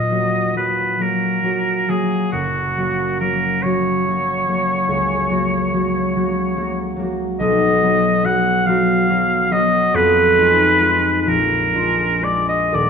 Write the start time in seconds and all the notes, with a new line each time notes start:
Already playing: D#1 D#2 A#2 D#4 F#4 D#5
0.11 F#3 A#3 F#4
0.55 F#3 A#3 F#4 B4
0.99 F#3 A#3 F#4 A#4
1.43 F#3 A#3 F#4
1.88 F#3 A#3 F#4 G#4
2.32 F#1 F#2 F#4
2.77 F#3 A#3 F#4
3.20 F#3 A#3 F#4 A#4
3.63 F#3 A#3 F#4 C#5
4.07 F#3 A#3 F#4
4.48 F#3 A#3 F#4
4.88 C#2
5.30 F#3 A#3 F#4
5.73 F#3 A#3 F#4
6.15 F#3 A#3 F#4
6.57 F#3 A#3 F#4
6.96 F#3 A#3
7.02 F#4
7.40 B1 D#5
7.82 F#3 B3 F#4
8.24 F#3 B3 F#4 F#5
8.67 F#3 B3 F#4 F5
9.09 F#3 B3 F#4
9.50 F#3 B3 F#4 D#5
9.94 F2 B4
10.35 G#3 D#4
10.40 F4
10.80 G#3 F4
11.22 B4
11.26 A#1 A#4
11.74 G#3 D4 F4
12.22 G#3 D4 F4 D5
12.49 D#5
12.72 D#1 D#2 D5